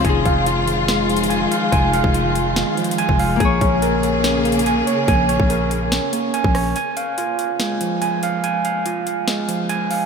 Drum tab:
HH |x-----x-----x-----x-----x-----x-x-x-x-----x-----|x-----x-----x-----x-----x-----x-x-x-x-----o-----|x-----x-----x-----x-----x-----x-x-x-x-----x-----|x-----x-----x-----x-----x-----x-----x-----o-----|
SD |------------------------o-----------------------|------------------------o-----------------------|------------------------o-----------------------|------------------------o-----------------r-----|
BD |o-----o-----------------------------------------|o--------o-----------------------------o--------|o-----o-----------------------------------------|o--------o-----------------------------o--------|

HH |x-----x-----x-----x-----x-----x-----x-----x-----|x-----x-----x-----x-----x-----x-----x-----o-----|
SD |------------------------o-----------------------|------------------------o-----------------------|
BD |------------------------------------------------|------------------------------------------------|